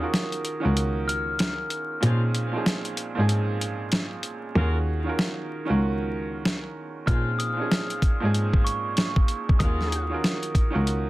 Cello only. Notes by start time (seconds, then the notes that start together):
0.65 C#2
2.03 A#2
3.17 G#2
4.56 D#2
5.70 C#2
7.08 A#2
8.23 G#2
9.60 D#2
10.75 C#2